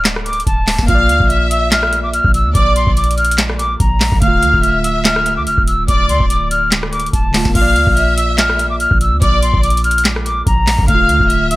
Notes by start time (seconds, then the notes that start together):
Already playing: D1
0.05 snare, clap, closed hi-hat
0.16 cross-stick
0.26 D6, closed hi-hat
0.33 closed hi-hat
0.40 closed hi-hat
0.46 D1 A5, kick, closed hi-hat
0.68 snare, clap, open hi-hat
0.79 D1, kick, snare
0.83 A#3
0.88 A#1 F4 F5 F6, kick, closed hi-hat
0.95 D5
1.09 D2, closed hi-hat
1.20 A#1, kick
1.30 E5, closed hi-hat
1.50 E6, closed hi-hat
1.72 F6, snare, clap, closed hi-hat
1.83 cross-stick
1.93 closed hi-hat
2.03 D6
2.13 F6, closed hi-hat
2.24 A#1, kick
2.34 E6, closed hi-hat
2.45 D2
2.54 A#1 D5 D6, kick, closed hi-hat
2.76 C6, closed hi-hat
2.87 A#1, kick
2.97 D6, closed hi-hat
3.04 closed hi-hat
3.11 closed hi-hat
3.18 F6, closed hi-hat
3.25 closed hi-hat
3.31 closed hi-hat
3.38 snare, clap, closed hi-hat
3.50 cross-stick
3.59 D6, closed hi-hat
3.80 A#1 A#5, kick, closed hi-hat
4.01 snare, clap, open hi-hat
4.12 A#1, kick
4.16 D3
4.22 D1 A3 F5 F6, kick, closed hi-hat
4.28 F4
4.43 D2, closed hi-hat
4.54 D1, kick
4.63 E5, closed hi-hat
4.84 E6, closed hi-hat
5.04 F6, snare, clap, closed hi-hat
5.16 cross-stick
5.26 closed hi-hat
5.37 D2 D6
5.47 D1 F6, closed hi-hat
5.58 D1, kick
5.67 E6, closed hi-hat
5.88 D1 D5 D6, kick, closed hi-hat
6.09 D2 C6, closed hi-hat
6.20 D1, kick
6.30 D6, closed hi-hat
6.51 F6, closed hi-hat
6.72 snare, clap, closed hi-hat
6.83 cross-stick
6.92 D6, closed hi-hat
7.00 closed hi-hat
7.06 closed hi-hat
7.13 D1 A5, kick, closed hi-hat
7.31 D3 A3, snare, clap, open hi-hat
7.37 F4
7.45 D1, kick, snare
7.50 A#3
7.55 A#1 F4 F5 F6, kick, closed hi-hat, crash
7.61 D5
7.76 D2, closed hi-hat
7.87 A#1, kick
7.97 E5, closed hi-hat
8.17 E6, closed hi-hat
8.38 F6, snare, clap, closed hi-hat
8.50 cross-stick
8.59 closed hi-hat
8.70 D6
8.80 F6, closed hi-hat
8.91 A#1, kick
9.01 E6, closed hi-hat
9.12 D2
9.21 A#1 D5 D6, kick, closed hi-hat
9.42 C6, closed hi-hat
9.54 A#1, kick
9.63 D6, closed hi-hat
9.70 closed hi-hat
9.77 closed hi-hat
9.84 F6, closed hi-hat
9.91 closed hi-hat
9.98 closed hi-hat
10.05 snare, clap, closed hi-hat
10.16 cross-stick
10.26 D6, closed hi-hat
10.47 A#1 A#5, kick, closed hi-hat
10.67 snare, clap, open hi-hat
10.79 A#1, kick
10.83 D3
10.88 D1 A3 F5 F6, kick, closed hi-hat
10.95 F4
11.09 D2, closed hi-hat
11.20 D1, kick
11.30 E5, closed hi-hat
11.51 E6, closed hi-hat